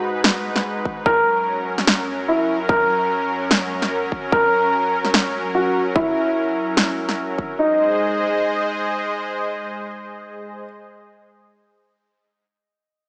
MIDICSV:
0, 0, Header, 1, 4, 480
1, 0, Start_track
1, 0, Tempo, 408163
1, 1245, Time_signature, 4, 2, 24, 8
1, 15393, End_track
2, 0, Start_track
2, 0, Title_t, "Grand piano"
2, 0, Program_c, 0, 0
2, 0, Note_on_c, 0, 66, 88
2, 1157, Note_off_c, 0, 66, 0
2, 1244, Note_on_c, 0, 70, 98
2, 1876, Note_off_c, 0, 70, 0
2, 2685, Note_on_c, 0, 64, 83
2, 3003, Note_off_c, 0, 64, 0
2, 3165, Note_on_c, 0, 70, 89
2, 4997, Note_off_c, 0, 70, 0
2, 5085, Note_on_c, 0, 70, 92
2, 5717, Note_off_c, 0, 70, 0
2, 6524, Note_on_c, 0, 66, 84
2, 6842, Note_off_c, 0, 66, 0
2, 7004, Note_on_c, 0, 64, 88
2, 8836, Note_off_c, 0, 64, 0
2, 8925, Note_on_c, 0, 63, 81
2, 12507, Note_off_c, 0, 63, 0
2, 15393, End_track
3, 0, Start_track
3, 0, Title_t, "Supersaw synth"
3, 0, Program_c, 1, 81
3, 0, Note_on_c, 1, 44, 84
3, 0, Note_on_c, 1, 56, 74
3, 0, Note_on_c, 1, 63, 76
3, 0, Note_on_c, 1, 71, 88
3, 1198, Note_off_c, 1, 44, 0
3, 1199, Note_off_c, 1, 56, 0
3, 1199, Note_off_c, 1, 63, 0
3, 1199, Note_off_c, 1, 71, 0
3, 1245, Note_on_c, 1, 42, 82
3, 1245, Note_on_c, 1, 54, 76
3, 1245, Note_on_c, 1, 61, 75
3, 1245, Note_on_c, 1, 70, 90
3, 8878, Note_off_c, 1, 42, 0
3, 8878, Note_off_c, 1, 54, 0
3, 8878, Note_off_c, 1, 61, 0
3, 8878, Note_off_c, 1, 70, 0
3, 8925, Note_on_c, 1, 56, 81
3, 8925, Note_on_c, 1, 72, 77
3, 8925, Note_on_c, 1, 75, 88
3, 8926, Note_on_c, 1, 68, 76
3, 12508, Note_off_c, 1, 56, 0
3, 12508, Note_off_c, 1, 72, 0
3, 12508, Note_off_c, 1, 75, 0
3, 12509, Note_off_c, 1, 68, 0
3, 15393, End_track
4, 0, Start_track
4, 0, Title_t, "Drums"
4, 285, Note_on_c, 9, 38, 114
4, 402, Note_off_c, 9, 38, 0
4, 655, Note_on_c, 9, 38, 36
4, 772, Note_off_c, 9, 38, 0
4, 1005, Note_on_c, 9, 36, 63
4, 1123, Note_off_c, 9, 36, 0
4, 1245, Note_on_c, 9, 36, 116
4, 1363, Note_off_c, 9, 36, 0
4, 2095, Note_on_c, 9, 38, 35
4, 2205, Note_off_c, 9, 38, 0
4, 2205, Note_on_c, 9, 38, 110
4, 2322, Note_off_c, 9, 38, 0
4, 3165, Note_on_c, 9, 36, 111
4, 3283, Note_off_c, 9, 36, 0
4, 4125, Note_on_c, 9, 38, 107
4, 4243, Note_off_c, 9, 38, 0
4, 4495, Note_on_c, 9, 38, 33
4, 4612, Note_off_c, 9, 38, 0
4, 4845, Note_on_c, 9, 36, 55
4, 4963, Note_off_c, 9, 36, 0
4, 5085, Note_on_c, 9, 36, 111
4, 5203, Note_off_c, 9, 36, 0
4, 5934, Note_on_c, 9, 38, 31
4, 6044, Note_off_c, 9, 38, 0
4, 6044, Note_on_c, 9, 38, 104
4, 6162, Note_off_c, 9, 38, 0
4, 7004, Note_on_c, 9, 36, 113
4, 7122, Note_off_c, 9, 36, 0
4, 7964, Note_on_c, 9, 38, 109
4, 8082, Note_off_c, 9, 38, 0
4, 8334, Note_on_c, 9, 38, 34
4, 8452, Note_off_c, 9, 38, 0
4, 8685, Note_on_c, 9, 36, 58
4, 8802, Note_off_c, 9, 36, 0
4, 15393, End_track
0, 0, End_of_file